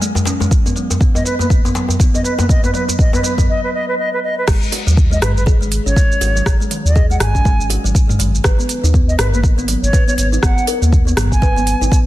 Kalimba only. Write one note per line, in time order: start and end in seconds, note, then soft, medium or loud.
0.01 0.15 G#3 loud
0.26 0.40 C#4 medium
0.41 0.46 G#3 medium
0.66 0.75 B3 medium
0.76 0.89 F#3 medium
1.01 1.14 B3 medium
1.15 1.24 B3 medium
1.40 1.49 A#3 medium
1.65 1.75 B3 medium
1.75 1.88 F#3 medium
2.00 2.13 B3 medium
2.14 2.24 B3 medium
2.39 2.48 A#3 medium
2.64 2.74 B3 medium
2.74 2.87 F#3 medium
3.13 3.23 B3 medium
3.23 3.37 F#3 medium
4.47 4.55 G#3 medium
4.72 4.85 F#4 loud
4.87 4.97 F#3 medium
5.11 5.21 G#3 medium
5.22 5.35 D#3 medium
5.46 5.60 G#4 medium
5.61 5.71 G#3 medium
5.86 5.95 C#4 medium
5.96 6.04 G#3 medium
6.21 6.34 F#4 loud
6.36 6.45 F#3 medium
6.60 6.70 G#3 medium
6.71 6.84 D#3 medium
6.96 7.09 G#4 medium
7.10 7.20 G#3 medium
7.35 7.44 C#4 medium
7.45 7.53 G#3 medium
7.70 7.83 F#4 loud
7.84 7.94 F#3 medium
8.09 8.19 G#3 medium
8.19 8.32 D#3 medium
8.44 8.57 B4 medium
8.59 8.69 B3 medium
8.84 8.93 D#4 medium
8.94 9.02 B3 medium
9.19 9.32 A#4 loud
9.33 9.43 A#3 medium
9.58 9.67 B3 medium
9.68 9.81 F#3 medium
9.93 10.06 B4 medium
10.08 10.17 B3 medium
10.32 10.42 D#4 medium
10.43 10.51 B3 medium
10.68 10.81 A#4 loud
10.82 10.92 A#3 medium
11.07 11.16 B3 medium
11.17 11.30 F#3 medium
11.42 11.55 B4 medium
11.56 11.66 B3 medium
11.81 11.91 D#4 medium
11.91 11.99 B3 medium